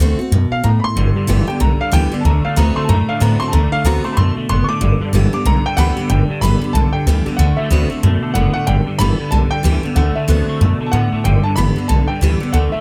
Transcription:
0.00 D2 D3 A3 C4 F#4
0.19 C4 F#4, muted upright bass stroke
0.31 F#2 B2
0.51 F5, muted upright bass stroke
0.64 A2 A#5
0.80 B5, muted upright bass stroke
0.84 C6
0.96 G1 G2 D3
1.16 G2 D3, muted upright bass stroke
1.27 G1 G2 D3 E3 G3 B3 G4
1.47 G2 D3 B3 G4 G5
1.60 B1 G2 D3 A#5
1.80 G2 D3 F5, muted upright bass stroke
1.91 D2 G2 D3 E3 G3 B3 G4 G5
2.12 G2 D3 B3 G4
2.21 D2 D3 A5
2.25 D3 A3 A#5
2.44 D3 A3 F5, muted upright bass stroke
2.56 D2 D3 A3 B3 C4 F#4 A#5
2.76 D3 A3 C6
2.85 A5
2.89 F#2 A2 D3 A3 A#5
3.08 D3 A3 F5, muted upright bass stroke
3.20 A2 D3 A3 B3 C4 F#4 A#5
3.40 D3 A3 C4 F#4 C6, muted upright bass stroke
3.48 A5
3.52 D2 D3 A3 A#5
3.72 D3 A3 F5
3.84 D2 D3 A3 B3 C4 F#4 A#5
4.04 D3 A3 C4 F#4 C6, muted upright bass stroke
4.13 B5
4.17 F#2 B2 D3 A3 C6
4.36 D3 A3, muted upright bass stroke
4.49 F#1 A2 D3 B3 C6
4.64 C#6
4.68 D3 A3 D6
4.81 G1 G2 D3
5.00 G2 D3, muted upright bass stroke
5.13 G1 G2 D3 E3 G3 B3 G4
5.33 G2 D3 B3 G4 D6
5.45 B1 G2 D3 A#5
5.65 G2 D3 G5
5.77 D2 G2 D3 E3 G3 B3 G4 F#5 G5 B5
5.97 G2 D3 B3 G4
6.09 G1 G2 D3 G5
6.29 G2 D3, muted upright bass stroke
6.41 G1 G2 D3 E3 G3 B3 G4 B5
6.61 G2 D3 B3 G4, muted upright bass stroke
6.73 B1 G2 D3 A5
6.93 G2 D3 G5, muted upright bass stroke
7.06 D2 G2 D3 E3 G3 B3 G4
7.25 G2 D3 B3 G4, muted upright bass stroke
7.37 D2 D3 A3 F#5
7.57 D3 A3 E5, muted upright bass stroke
7.70 D2 D3 A3 B3 C4 F#4
7.90 D3 A3 C4 F#4, muted upright bass stroke
8.03 F#2 B2 D3 A3
8.22 D3 A3, muted upright bass stroke
8.34 F#1 A2 D3 B3 F#5
8.54 D3 A3 F#5
8.67 G1 G2 D3 G5
8.86 G2 D3, muted upright bass stroke
8.99 G1 G2 D3 E3 G3 B3 G4 B5
9.19 G2 D3, muted upright bass stroke
9.31 B1 G2 D3 A5
9.51 G2 D3 G5, muted upright bass stroke
9.63 D2 G2 D3 E3 G3 B3 G4
9.83 G2 D3 B3 G4
9.95 D2 D3 A3 F#5
10.16 D3 A3 E5, muted upright bass stroke
10.28 D2 D3 A3 B3 C4 F#4
10.47 D3 A3, muted upright bass stroke
10.61 F#2 B2 D3 A3
10.80 D3 A3, muted upright bass stroke
10.86 A5
10.92 A2 D3 B3 F#5
11.12 D3 A3, muted upright bass stroke
11.24 G1 G2 D3 G5
11.44 G2 D3 A5, muted upright bass stroke
11.56 G1 G2 D3 E3 G3 B3 G4 B5
11.76 G2 D3 B3 G4, muted upright bass stroke
11.88 B1 G2 D3 A5
12.08 G2 D3 G5, muted upright bass stroke
12.21 D2 G2 D3 E3 G3 B3 G4
12.40 G2 D3 B3 G4
12.53 D2 D3 A3 F#5
12.72 D3 A3 E5, muted upright bass stroke

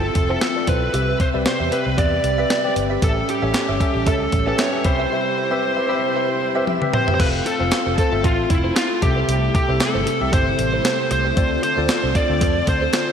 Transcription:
Already playing: F3 C4 F4 A4 C5 E5 G5
0.03 muted clean electric guitar stroke
0.15 F1, muted clean electric guitar stroke, kick, closed hi-hat
0.29 C4 E4 F4 A4 C5 E5
0.41 muted clean electric guitar stroke, snare, closed hi-hat
0.55 C4 F4 A4 D5, muted clean electric guitar stroke
0.67 B1 E4 A4 B4 C5, kick, closed hi-hat
0.82 muted clean electric guitar stroke
0.93 C2 C3 G3 C4 G4 B4 E5, closed hi-hat
1.08 muted clean electric guitar stroke
1.20 C5, muted clean electric guitar stroke, kick, closed hi-hat
1.33 C2 C4 G4 B4 D5 E5
1.46 C5, muted clean electric guitar stroke, snare, closed hi-hat
1.60 E2 G4 B4 E5
1.71 C4 G4 B4 E5, closed hi-hat
1.86 C2
1.97 E2 G4 B4 D5 E5, kick, closed hi-hat
2.12 muted clean electric guitar stroke
2.24 C2, muted clean electric guitar stroke, closed hi-hat
2.38 C4 G4 B4 E5
2.50 G4 B4 E5, snare, closed hi-hat
2.64 C4 G4 B4 D5, muted clean electric guitar stroke
2.76 G1, muted clean electric guitar stroke, closed hi-hat
2.90 G4 B4 E5
3.02 A1 A2 A3 C#4 G4 A4 C#5 E5, kick, closed hi-hat
3.16 muted clean electric guitar stroke
3.28 G4, muted clean electric guitar stroke, closed hi-hat
3.42 A1 C#4 G4 A4 C#5 E5
3.54 muted clean electric guitar stroke, snare, clap, closed hi-hat
3.68 G1 G4 C#5 E5
3.80 C#4 G4 A4 C#5 E5, kick, closed hi-hat
3.95 A1, muted clean electric guitar stroke
4.06 C#2 G4 A4 C#5 E5, kick, closed hi-hat
4.21 muted clean electric guitar stroke
4.32 A1, muted clean electric guitar stroke, kick, closed hi-hat
4.47 C#4 G4 A4 B4 C#5 E5
4.58 G4 C#5 E5, snare, clap, closed hi-hat
4.72 C#4 G4 A4 E5, muted clean electric guitar stroke
4.84 C2 C3 C4 E4 G4 C5 E5 B5, muted clean electric guitar stroke, kick, closed hi-hat
4.99 G4 B4 E5
5.11 G4 B4 E5
5.25 muted clean electric guitar stroke
5.37 muted clean electric guitar stroke
5.50 C4 G4 B4 E5
5.63 muted clean electric guitar stroke
5.77 G4 B4 E5
5.88 C4 G4 B4 E5 B5
6.03 muted clean electric guitar stroke
6.15 G4 B4 E5
6.29 muted clean electric guitar stroke
6.41 muted clean electric guitar stroke
6.55 C4 G4 B4 E5
6.67 G4 B4 E5, high tom
6.81 C4 G4 B4 E5, muted clean electric guitar stroke, mid tom
6.93 C5, muted clean electric guitar stroke, mid tom
7.07 G4 B4 E5, floor tom
7.14 C5
7.19 F1 A3 C4 F4 A4 B4 C5 F5, kick, closed hi-hat, crash
7.34 muted clean electric guitar stroke
7.46 A4, muted clean electric guitar stroke, closed hi-hat
7.59 F1 C4 F4 A4 C5 F5
7.72 muted clean electric guitar stroke, snare, clap, closed hi-hat
7.86 F1 F4 A4 C5
7.98 F4 A4 C5, kick, closed hi-hat
8.11 G1 C4 F4 A4 E5, muted clean electric guitar stroke
8.24 A1 F4 A4 C5, kick, closed hi-hat
8.38 muted clean electric guitar stroke
8.50 F1 E4, muted clean electric guitar stroke, kick, closed hi-hat
8.64 F4 A4 C5
8.76 F4 A4 C5, snare, clap, closed hi-hat
8.90 muted clean electric guitar stroke
9.02 C2 C3 G3 C4 E4 G4 A4 E5, muted clean electric guitar stroke, kick, closed hi-hat
9.16 E4 A4 C5
9.28 C2 E4 A4 C5, closed hi-hat
9.42 muted clean electric guitar stroke
9.54 G4, muted clean electric guitar stroke, kick, closed hi-hat
9.68 C2 C4 E4 G4 A4 C5 E5
9.80 A4, muted clean electric guitar stroke, snare, clap, closed hi-hat
9.94 G1 E4 A4 C5
10.06 E4 A4 C5, closed hi-hat
10.20 C2 C4 G4 A4 E5, muted clean electric guitar stroke
10.32 G1 E4 A4 C5, kick, closed hi-hat
10.46 muted clean electric guitar stroke
10.58 A1, muted clean electric guitar stroke, closed hi-hat
10.73 E4 A4 C5
10.84 E4 A4 C5, snare, clap, closed hi-hat
10.99 muted clean electric guitar stroke
11.11 C2 C5, muted clean electric guitar stroke, closed hi-hat
11.25 E4 A4 C5
11.36 D2 D3 C4 F4 A4 C5 D5, kick, closed hi-hat
11.51 muted clean electric guitar stroke
11.62 C5, muted clean electric guitar stroke, closed hi-hat
11.77 D2 C4 F4 A4 C5 D5
11.89 snare, clap, closed hi-hat
12.03 C2 F4 A4 C5
12.15 F4 A4 C5 D5, kick, closed hi-hat
12.29 D2 C4 F4 A4 D5, muted clean electric guitar stroke
12.41 F2 F4 A4 C5, kick, closed hi-hat
12.55 muted clean electric guitar stroke
12.67 D2 C5, muted clean electric guitar stroke, kick, closed hi-hat
12.81 F4 A4 C5
12.93 F4 A4 C5, snare, clap, closed hi-hat
13.07 muted clean electric guitar stroke

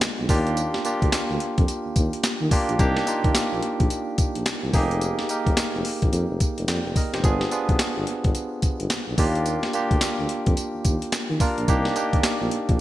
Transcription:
Already playing: G#3 B3 D4 F4 G4
0.01 B1, snare, clap, closed hi-hat, tambourine
0.19 B1
0.29 D#2 A#3 D4 F4 G4, kick, open hi-hat, tambourine
0.47 closed hi-hat
0.57 closed hi-hat, tambourine
0.74 snare
0.85 A#3 D4 F4 G4, closed hi-hat, tambourine
1.02 D2, kick, closed hi-hat
1.12 D2, snare, clap, closed hi-hat, tambourine
1.30 D2
1.40 closed hi-hat
1.58 F2, kick, closed hi-hat
1.68 closed hi-hat, tambourine
1.86 D#2
1.96 D#2, kick, closed hi-hat, tambourine
2.13 closed hi-hat
2.23 snare, clap, closed hi-hat, tambourine
2.41 D#3
2.51 A#3 D4 F4 G4, kick, open hi-hat, tambourine
2.69 A#1, closed hi-hat
2.79 C2 A#3 D4 D#4 G4, kick, closed hi-hat, tambourine
2.97 snare
3.07 A#3 D4 D#4 F4, closed hi-hat, tambourine
3.24 D#2, kick, closed hi-hat
3.35 A#1, snare, clap, closed hi-hat, tambourine
3.52 A#1
3.63 closed hi-hat
3.80 A#1, kick, closed hi-hat
3.90 closed hi-hat, tambourine
4.18 A#1, kick, closed hi-hat, tambourine
4.35 A#1, closed hi-hat
4.46 C2, snare, clap, closed hi-hat, tambourine
4.63 C2
4.73 F1 A#3 D#4 G4 G#4, kick, open hi-hat, tambourine
4.91 closed hi-hat
5.01 closed hi-hat, tambourine
5.19 snare
5.29 A#3 D#4 G4 A#4, closed hi-hat, tambourine
5.47 F1, kick, closed hi-hat
5.57 F1, snare, clap, closed hi-hat, tambourine
5.75 F1
5.85 open hi-hat
6.02 A#1, kick, closed hi-hat
6.12 F2, closed hi-hat, tambourine
6.30 F1
6.40 kick, closed hi-hat, tambourine
6.58 F1, closed hi-hat
6.68 F2 D5 G5, snare, clap, closed hi-hat, tambourine
6.86 F1
6.96 A#4 D#5, kick, open hi-hat, tambourine
7.13 F1 G4 C5, snare, closed hi-hat
7.24 G1 B3 D4 F4 G#4, kick, closed hi-hat, tambourine
7.41 snare
7.51 B3 D4 F4 G#4, closed hi-hat, tambourine
7.69 B1, kick, closed hi-hat
7.79 G1, snare, clap, closed hi-hat, tambourine
7.97 G1
8.07 closed hi-hat
8.24 G1, kick, closed hi-hat
8.35 closed hi-hat, tambourine
8.62 G1, kick, closed hi-hat, tambourine
8.80 G1, closed hi-hat
8.90 B1, snare, clap, closed hi-hat, tambourine
9.08 B1
9.18 D#2 A#3 D4 F4 G4, kick, open hi-hat, tambourine
9.35 closed hi-hat
9.46 closed hi-hat, tambourine
9.63 snare
9.73 A#3 D4 F4 G4, closed hi-hat, tambourine
9.91 D2, kick, closed hi-hat
10.01 D2, snare, clap, closed hi-hat, tambourine
10.19 D2
10.29 closed hi-hat
10.46 F2, kick, closed hi-hat
10.57 closed hi-hat, tambourine
10.75 D#2
10.85 D#2, kick, closed hi-hat, tambourine
11.02 closed hi-hat
11.12 snare, clap, closed hi-hat, tambourine
11.30 D#3
11.40 A#3 D4 F4 A#4, kick, open hi-hat, tambourine
11.58 A#1, closed hi-hat
11.68 C2 A#3 D4 D#4 G4, kick, closed hi-hat, tambourine
11.85 snare
11.96 A#3 D4 D#4 G4, closed hi-hat, tambourine
12.13 D#2, kick, closed hi-hat
12.23 A#1, snare, clap, closed hi-hat, tambourine
12.41 A#1
12.51 closed hi-hat
12.69 A#1, kick, closed hi-hat

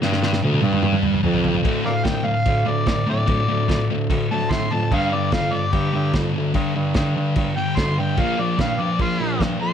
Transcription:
0.02 G2, snare
0.12 snare
0.23 snare
0.33 snare
0.43 D2, high tom
0.53 high tom
0.62 G2, high tom
0.73 mid tom
0.83 mid tom
0.93 mid tom
1.03 mid tom
1.14 mid tom
1.23 F2, mid tom
1.34 floor tom
1.44 floor tom
1.55 floor tom
1.63 D2 A2 D3, kick, crash
1.84 D2 A2 A#4 D5 F5
2.04 C2 D2 A2 G5, kick, snare, crash
2.25 D2 A2 F5
2.46 D2 A2, kick, crash
2.65 D2 A2 D5
2.86 C2 D2 A2, kick, snare, crash
3.07 D2 A2 D5
3.27 D2 A2, kick, crash
3.48 D2 A2
3.68 D2 A2, kick, snare, crash
3.90 D2 A2
4.10 D2 A2, kick, crash
4.31 D2 A2 A5
4.51 D2 A2 C6, kick, snare, crash
4.72 D2 F2 A2 A5
4.92 G2 D3 G3 F5, kick, crash
5.12 G2 D3 D5
5.32 F2 G2 D3 F5, kick, snare, crash
5.52 G2 D3 D5
5.73 G2 D3 G4, kick, crash
5.93 G2 D3
6.13 F2 G2 D3, kick, snare, crash
6.34 D2 G2 D3
6.54 G2 D3, kick, crash
6.75 G2 D3
6.94 G2 D3, kick, snare, crash
7.16 G2 D3
7.36 G2 D3, kick, crash
7.57 G2 D3 G5
7.77 D2 G2 D3 C6, kick, snare, crash
7.97 G2 D3 G5
8.17 A#1 A#2 F3 A#3 F5, kick, crash
8.38 A#1 A#2 F3 D5
8.58 G2 A#2 F3 F5, kick, snare, crash
8.80 A#2 F3 D5
8.99 A#1 A#2 F3 F4, kick, crash
9.20 A#1 A#2 F3
9.38 G2 A#2 F3, kick, snare, crash
9.59 F2 A#2 F3 C6

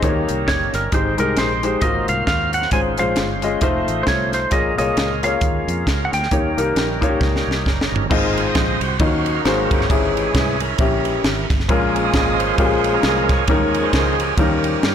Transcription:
0.02 D#2 D#3 G3 A#3 C#4 D#4 F4 A#4 C#5, kick, closed hi-hat
0.09 G4
0.29 C2, closed hi-hat
0.48 F#1 C#5, kick, snare, closed hi-hat
0.73 G1 A#4, snare, closed hi-hat
0.92 G#1 G#2 G#3 D#4 G4 C5, kick, closed hi-hat
1.18 C2 G#3 D#4 G4 A#4, closed hi-hat
1.37 A#1 C5, snare, closed hi-hat
1.63 G#3 D#4 G4 C5, closed hi-hat
1.81 G#1 G#2 F#3 A#3 C4 F4 F#4 A#4 C5 D#5 F5, kick, closed hi-hat
2.08 C2 F5, closed hi-hat
2.27 D#2 F5, kick, snare, closed hi-hat
2.53 F#5, closed hi-hat
2.62 snare
2.71 G#1 G#2 G#3 C#4 F4 C5 G#5, kick, closed hi-hat
2.98 A#1 G#3 C#4 F4 C5 F5, closed hi-hat
3.16 G1, snare, closed hi-hat
3.42 G#3 C#4 F4 D#5, closed hi-hat
3.61 F1 A3 D#4 F4 B4 C5, kick, closed hi-hat
3.69 C5
3.88 A1, closed hi-hat
4.03 C2 C5, kick, snare, closed hi-hat
4.08 C#5
4.32 C5, snare, closed hi-hat
4.50 A#1 A#2 G#3 A#3 C#4 F4 G#4 A#4 C#5 D#5, kick, closed hi-hat
4.77 C2 A#3 F4 G#4 C#5 D#5, closed hi-hat
4.97 C#2, snare, closed hi-hat
5.23 A#3 F4 G#4 C#5 F5, closed hi-hat
5.41 D#2, kick, closed hi-hat
5.68 F2, closed hi-hat
5.87 C#2, kick, snare, closed hi-hat
6.05 F#5
6.12 D2 G5, snare, closed hi-hat
6.23 snare
6.31 D#2 D#3 G3 A#3 C#4 D#4 G4 A#4 C#5, kick, closed hi-hat
6.57 C2 A#3 D#4 G4 A#4, closed hi-hat
6.76 A#1, snare, closed hi-hat
7.01 A#3 D#4 F4 C#5, kick, closed hi-hat
7.08 G4
7.21 C#2, kick, snare
7.36 snare
7.47 C2
7.51 snare
7.66 F#1, kick, snare
7.81 snare
7.92 G1, floor tom
8.09 G#1 G#2 A#3 C4 D#4 F4 G#4 D#5, kick, crash
8.38 ride
8.47 C5 D#5
8.55 A#1, kick, snare, ride
8.81 C2 F#4 C5, ride
8.99 D#2 D#3 F#3 C#4 D#4 F4 A#4 D#5 F5, kick, ride
9.06 F#4
9.26 ride
9.36 D#4 F#4 A#4
9.45 G#1 G#2 F#3 A#3 C4 D#4 F#4 G#4 C5, snare, ride
9.71 G1 C#4 E4 G4, kick, ride
9.81 snare
9.89 G#1 G#2 E3 G#3 C#4 E4 G#4, kick, ride
10.17 ride
10.26 C#4 E4 G#4
10.35 C2, kick, snare, ride
10.60 C#4 E4 A#4, ride
10.78 A#1 C#4 E4 G4, kick, ride
11.05 E3 G#3 C#4, ride
11.24 G#1, snare, ride
11.50 G1, kick, snare, ride
11.60 snare
11.68 A#1 A#2 G#3 A#3 C#4 F4 G#4 A#4, kick, ride
11.94 F3 G#3 A#3, ride
12.05 G#4 D#5
12.13 G#1, kick, snare, ride
12.38 F4 G#4 C5, ride
12.58 A#1 G#3 A#3 C#4 F4 G4, kick, ride
12.65 G#4
12.84 ride
12.94 C#4 F4 A#4
13.03 C2, snare, ride
13.29 G#4 A#4 C#5, kick, snare, ride
13.47 D#2 D#3 F3 G3 G#3 A#3 C#4 D#4 A#4, kick, ride
13.54 G#3
13.74 ride
13.85 G#4 C5
13.93 C#2, kick, snare, ride
14.20 C#4 G4 A#4, ride
14.37 D#2 D#3 F3 G3 A#3 C#4 D#4 A#4, kick, ride
14.64 ride
14.83 G2, snare, ride

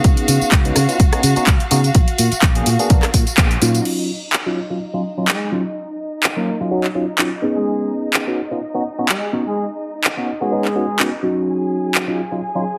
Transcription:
Already playing: B3 C#4 D#4 F#4 G#4 F5
0.04 C#2, kick, closed hi-hat, tambourine
0.17 closed hi-hat
0.28 C#3, open hi-hat, tambourine
0.41 muted fingered electric bass stroke, tambourine
0.52 C#2, kick, clap, closed hi-hat, tambourine
0.65 B3 C#4 D#4 F#4, closed hi-hat
0.76 C#3, cross-stick, open hi-hat, tambourine
0.89 B3 C#4 D#4 F4, closed hi-hat, tambourine
1.00 C#2, kick, closed hi-hat, tambourine
1.13 B3 C#4 D#4 F#4, cross-stick, closed hi-hat
1.23 C#3, open hi-hat, tambourine
1.36 B3 C#4 D#4 F#4, muted fingered electric bass stroke, closed hi-hat, tambourine
1.47 C#2, kick, clap, closed hi-hat, tambourine
1.60 closed hi-hat
1.71 C#3 B3 C#4 D#4 F#4, open hi-hat, tambourine
1.84 closed hi-hat, tambourine
1.95 A#1, kick, closed hi-hat, tambourine
2.08 closed hi-hat
2.18 A#2, open hi-hat, tambourine
2.32 muted fingered electric bass stroke, closed hi-hat, tambourine
2.42 A#1, kick, clap, closed hi-hat, tambourine
2.55 A#3 B3 D4 G#4, closed hi-hat
2.66 A#2, open hi-hat, tambourine
2.79 A#3 B3 D4 G#4, closed hi-hat, tambourine
2.90 A#1 A#3 B3 D4 A#4, kick, closed hi-hat, tambourine
3.03 cross-stick, clap, closed hi-hat
3.14 A#2, kick, open hi-hat, tambourine
3.27 muted fingered electric bass stroke, closed hi-hat, tambourine
3.37 A#1 A#3 B3 D4 G#4, kick, clap, closed hi-hat, tambourine
3.51 closed hi-hat
3.62 A#2 F#3 C#4 D#4 F4, open hi-hat, tambourine
3.75 closed hi-hat, tambourine
3.85 D#4 D#5, crash
4.33 clap
4.46 F#3 C#4 D#4 F4
4.70 F#3 C#4 D#4 F4
4.93 F#3 C#4 D#4 F4
5.17 F#3 C#4 D#4 F4
5.28 G#3 G#4, clap
5.52 F#3 C#4 D#4 F4
6.23 clap
6.36 F#3 A#3 C#4 D#4 F4 A#4
6.60 F#3 C#4 D#4 F4
6.71 F#3 C#4 D#4 F#4
6.84 clap
6.95 F#3 C#4 D#4 F4
7.18 F#3 C#4 D#4 F4, clap
7.42 B3 C#4 D#4 G#4
7.56 G#3 G#4
8.14 clap
8.27 B3 C#4 D#4 F#4
8.51 B3 C#4 D#4 F4
8.74 B3 C#4 D#4 F#4
8.98 B3 C#4 D#4 F#4
9.09 G#3 G#4, clap
9.33 B3 C#4 D#4 F#4
9.46 G#3 G#4
10.04 clap
10.17 B3 C#4 D#4 F#4
10.41 G#3 B3 C#4 D#4 F#4 G#4
10.52 B3 C#4 D#4 G#4
10.65 clap
10.75 B3 C#4 D#4 F#4
10.99 B3 C#4 D#4 F#4, clap
11.22 F#3 C#4 D#4 F#4
11.47 G#4 G#5
11.95 clap
12.07 F#3 C#4 D#4 F4
12.31 F#3 C#4 D#4 F4
12.55 F#3 C#4 D#4 F4

